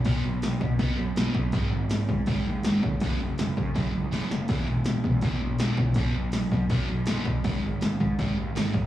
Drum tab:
HH |o-o-o-o-|o-o-o-o-|o-o-o-o-|o-o-o-o-|
SD |--o---o-|--o---o-|--o---oo|--o---o-|
BD |o--oo--o|o--oo--o|o--oo---|o--oo--o|

HH |o-o-o-o-|o-o-o-o-|
SD |--o---o-|--o---o-|
BD |o--oo--o|o--oo--o|